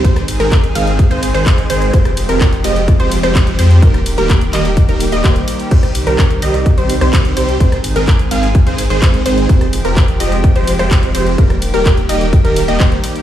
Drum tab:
CC |----------------|----------------|----------------|x---------------|
RD |--x---x---x---x-|--x---x---x---x-|--x---x---x---x-|--x---x---x---x-|
HH |xxoxxxoxxxoxxxox|xxoxxxoxxxoxxxox|xxoxxxoxxxoxxxox|xxoxxxoxxxoxxxox|
CP |----x-------x---|----x-------x---|----x-x-----x---|----x-------x---|
SD |-r--------------|-r--r------r----|-r--r-----------|-r--r------r----|
BD |o---o---o---o---|o---o---o---o---|o---o---o---o---|o---o---o---o---|

CC |----------------|----------------|----------------|
RD |--x---x---x---x-|--x---x---x---x-|--x---x---x---x-|
HH |xxoxxxoxxxoxxxox|xxoxxxoxxxoxxxox|xxoxxxoxxxoxxxox|
CP |----x-------x---|----x-------x---|----x-------x---|
SD |-r--------------|-r--r------r----|-r--------------|
BD |o---o---o---o---|o---o---o---o---|o---o---o---o---|